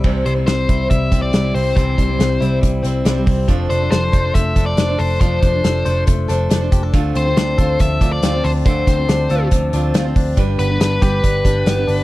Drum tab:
CC |x-------|--------|--------|--------|
HH |-xxxxxxo|xxxxxxxo|xxxxxxxo|xxxxxxxx|
SD |--o---o-|--o---o-|--o---o-|--o---o-|
BD |o--ooo--|oo--o--o|o--ooo--|oo--o--o|

CC |--------|--------|--------|
HH |xxxxxxxo|xxxxxxxo|xxxxxxxo|
SD |--o---o-|--o---o-|--o---o-|
BD |o--ooo--|oo--o--o|o--ooo--|